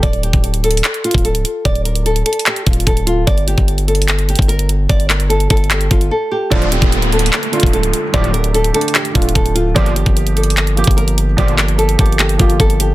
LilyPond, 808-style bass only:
\new Staff \with { instrumentName = "808-style bass" } { \clef bass \time 4/4 \key g \dorian \tempo 4 = 148 d,,8. d,,4~ d,,16 r8. d,,8 cis,,16 r8 | d,,4. r4 d,,8 d,,4 | g,,8. g,,2 g,,4~ g,,16 | g,,4. g,,4 g,,8 r4 |
d,,8. d,,4~ d,,16 r8. d,,8 cis,,16 r8 | d,,4. r4 d,,8 d,,4 | g,,8. g,,2 g,,4~ g,,16 | g,,4. g,,4 g,,8 g,,4 | }